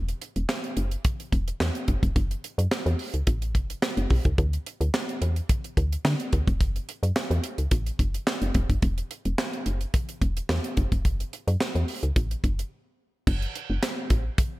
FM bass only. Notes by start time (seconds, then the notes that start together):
Already playing: E1
0.36 E1
0.77 F#1
1.32 E1
1.60 E2
1.88 F#1
2.03 E1
2.16 F#1
2.58 F#2
2.86 E2
3.14 C#2
3.27 A1
3.55 F#1
3.97 F#1
4.11 B1
4.25 C#2
4.38 D2
4.81 D2
5.22 E2
5.77 D2
6.05 D3
6.33 D2
6.48 E1
6.60 F#1
7.03 F#2
7.31 E2
7.58 C#2
7.71 A1
7.99 F#1
8.42 F#1
8.55 E1
8.69 F#1
8.83 E1
9.26 E1
9.66 F#1
10.21 E1
10.49 E2
10.77 F#1
10.92 E1
11.05 F#1
11.48 F#2
11.75 E2
12.03 C#2
12.16 A1
12.44 F#1
13.27 F#1
13.70 F#1
14.10 A1